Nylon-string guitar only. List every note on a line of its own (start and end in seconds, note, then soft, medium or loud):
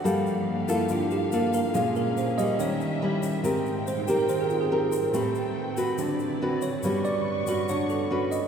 0.04 0.87 G3 medium
0.04 0.47 A#3 medium
0.04 0.47 F4 medium
0.04 0.47 A4 medium
0.68 1.28 A#3 medium
0.68 1.29 F4 medium
0.68 1.29 A4 medium
0.90 1.73 D3 medium
1.33 1.60 A#3 medium
1.33 1.60 F4 medium
1.33 1.60 A4 medium
1.74 2.57 A#2 medium
1.74 2.16 G#3 medium
1.74 2.17 C#4 medium
1.74 2.17 F4 medium
2.38 2.98 G3 medium
2.38 2.99 C#4 medium
2.59 3.42 D#3 medium
3.02 3.41 G3 medium
3.02 3.41 C#4 medium
3.02 3.41 E4 medium
3.44 4.27 G#3 medium
3.44 3.86 C4 medium
3.44 3.86 G4 medium
3.44 3.86 A#4 medium
4.08 4.68 C4 medium
4.08 4.69 G4 medium
4.08 4.69 A#4 medium
4.29 5.12 D#3 medium
4.72 5.11 C4 medium
4.72 5.11 G4 medium
4.72 5.11 A#4 medium
5.14 5.97 A3 medium
5.14 5.56 C4 medium
5.14 5.56 G4 medium
5.14 5.56 B4 medium
5.77 6.38 C4 medium
5.77 6.38 F#4 medium
5.77 6.38 B4 medium
5.98 6.81 D3 medium
6.42 6.69 C4 medium
6.42 6.69 F#4 medium
6.42 6.69 B4 medium
6.84 7.67 G3 medium
6.84 7.44 C#4 soft
6.84 7.44 F#4 medium
6.84 7.44 B4 medium
7.47 8.07 C#4 medium
7.47 8.08 F#4 medium
7.47 8.08 B4 medium
7.69 8.48 D3 medium
8.11 8.38 C#4 medium
8.11 8.38 F#4 medium
8.11 8.38 B4 medium